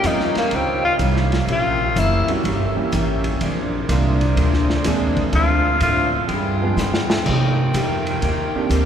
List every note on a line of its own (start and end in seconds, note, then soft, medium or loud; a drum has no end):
0.00 0.34 F2 medium
0.00 0.37 D#3 medium
0.00 0.49 G3 medium
0.00 0.37 G3 medium
0.00 0.49 A#3 medium
0.00 0.49 C#4 medium
0.00 0.49 D#4 medium
0.00 1.46 D#4 medium
0.00 0.49 F4 medium
0.00 3.37 G4 medium
0.00 1.46 C#5 medium
0.00 1.46 F5 medium
0.00 hi-hat pedal medium
0.00 ride medium
0.05 0.38 C#4 medium
0.05 0.37 D#4 medium
0.05 0.38 F4 medium
0.20 snare soft
0.35 0.57 A#3 medium
0.35 muted upright bass stroke soft
0.35 snare soft
0.35 ride soft
0.51 0.99 C#2 medium
0.51 0.85 D#3 soft
0.51 0.86 G3 soft
0.51 0.86 C#4 soft
0.51 0.87 F4 soft
0.51 ride medium
0.55 0.84 C4 medium
0.85 0.94 F4 medium
0.99 1.46 C2 medium
0.99 1.34 D#3 medium
0.99 1.34 G3 medium
0.99 1.34 C#4 medium
0.99 1.35 F4 medium
0.99 hi-hat pedal soft
0.99 ride medium
1.16 snare soft
1.32 snare soft
1.32 ride medium
1.46 1.94 A#1 medium
1.46 1.81 E3 soft
1.46 1.82 A#3 soft
1.46 3.37 C#4 medium
1.46 1.82 C#4 soft
1.46 1.83 G4 medium
1.46 3.38 A#4 medium
1.46 3.38 E5 medium
1.46 ride medium
1.52 2.01 F4 medium
1.95 2.26 F#1 medium
1.95 2.29 E3 medium
1.95 2.30 A#3 medium
1.95 2.30 C#4 medium
1.95 2.31 G4 medium
1.95 hi-hat pedal medium
1.95 ride medium
2.00 2.30 E4 medium
2.28 2.43 G3 medium
2.28 2.43 A#3 medium
2.28 2.43 C#4 medium
2.28 2.43 E4 medium
2.28 2.43 F#4 medium
2.28 muted upright bass stroke soft
2.28 ride medium
2.43 2.74 G1 medium
2.43 2.77 E3 soft
2.43 2.78 A#3 soft
2.43 2.79 C#4 medium
2.43 2.79 G4 medium
2.43 ride medium
2.76 2.90 G3 medium
2.76 2.91 A#3 medium
2.76 2.91 C#4 medium
2.76 2.91 E4 medium
2.76 2.91 G4 medium
2.76 muted upright bass stroke soft
2.92 3.39 A1 medium
2.92 3.26 E3 medium
2.92 3.26 A#3 medium
2.92 3.27 C#4 medium
2.92 3.27 G4 medium
2.92 hi-hat pedal medium
2.92 ride medium
3.24 ride medium
3.40 3.87 A#1 medium
3.40 3.74 A#2 soft
3.40 3.75 G#3 soft
3.40 5.32 C4 medium
3.40 3.75 C4 medium
3.40 3.76 D4 medium
3.40 5.31 G#4 medium
3.40 5.32 A#4 medium
3.40 5.31 D5 medium
3.40 ride medium
3.89 4.35 C2 medium
3.89 4.23 A#2 medium
3.89 4.17 G#3 medium
3.89 4.23 G#3 medium
3.89 4.17 A#3 medium
3.89 4.18 C4 medium
3.89 4.24 C4 medium
3.89 4.18 D4 medium
3.89 4.24 D4 medium
3.89 4.18 F4 medium
3.89 hi-hat pedal medium
3.89 ride medium
4.21 ride soft
4.36 4.83 D2 medium
4.36 4.71 A#2 medium
4.36 4.72 G#3 medium
4.36 4.72 C4 medium
4.36 ride medium
4.41 4.72 D4 soft
4.53 snare soft
4.70 snare soft
4.84 5.32 D#2 medium
4.84 5.19 A#2 medium
4.84 5.33 G#3 medium
4.84 5.19 G#3 medium
4.84 5.33 A#3 medium
4.84 5.32 C4 medium
4.84 5.20 C4 medium
4.84 5.32 D4 medium
4.84 5.20 D4 medium
4.84 5.34 G#4 medium
4.84 snare soft
4.84 hi-hat pedal medium
4.84 ride medium
5.17 kick medium
5.17 ride soft
5.31 5.80 D2 medium
5.31 5.67 D3 soft
5.31 5.62 F3 medium
5.31 5.62 A3 medium
5.31 5.62 C4 medium
5.31 6.28 D4 medium
5.31 5.62 D4 soft
5.31 5.62 F4 medium
5.31 6.28 A4 medium
5.31 6.27 C5 medium
5.31 6.28 F5 medium
5.31 ride medium
5.35 5.68 A3 soft
5.35 5.68 C4 soft
5.35 5.79 F4 medium
5.35 5.68 F4 soft
5.80 6.28 A2 medium
5.80 6.16 D3 medium
5.80 6.16 A3 medium
5.80 6.16 C4 medium
5.80 6.12 F4 medium
5.80 hi-hat pedal soft
5.80 ride medium
5.85 6.17 F4 medium
6.28 6.76 G2 medium
6.28 6.64 G3 medium
6.28 7.07 F4 medium
6.28 7.07 G#4 medium
6.28 7.07 B4 medium
6.28 8.85 G5 medium
6.28 ride medium
6.32 6.65 B3 soft
6.32 6.65 F4 medium
6.32 6.66 G#4 medium
6.61 6.76 F3 medium
6.61 6.76 G#3 medium
6.61 6.76 B3 medium
6.61 6.76 D4 medium
6.61 6.76 G#4 medium
6.77 7.24 G#2 medium
6.77 7.12 G3 medium
6.77 7.12 B3 medium
6.77 7.13 F4 medium
6.77 snare soft
6.77 hi-hat pedal medium
6.81 7.13 G#4 medium
6.94 snare medium
7.10 snare medium
7.24 7.73 C3 medium
7.24 7.60 C3 medium
7.24 8.85 D#3 medium
7.24 7.60 A#3 medium
7.24 8.85 A#4 medium
7.24 8.85 C5 medium
7.24 kick medium
7.24 crash medium
7.28 7.61 D#4 medium
7.28 7.61 G4 soft
7.74 8.21 F2 medium
7.74 8.07 C3 medium
7.74 8.08 A#3 medium
7.74 8.09 D#4 medium
7.74 8.09 G4 medium
7.74 hi-hat pedal medium
7.74 ride medium
8.07 ride soft
8.22 8.52 D#2 medium
8.22 8.55 C3 medium
8.22 8.56 A#3 medium
8.22 8.57 D#4 medium
8.22 8.57 G4 medium
8.22 ride medium
8.55 8.85 D#3 medium
8.55 8.85 A#3 medium
8.55 8.85 C4 medium
8.55 8.85 D4 medium
8.55 8.85 G4 medium
8.55 muted upright bass stroke soft
8.70 8.85 D2 medium
8.70 8.85 C3 medium
8.70 8.85 A#3 medium
8.70 8.85 D#4 medium
8.70 8.85 G4 medium
8.70 hi-hat pedal medium
8.70 ride medium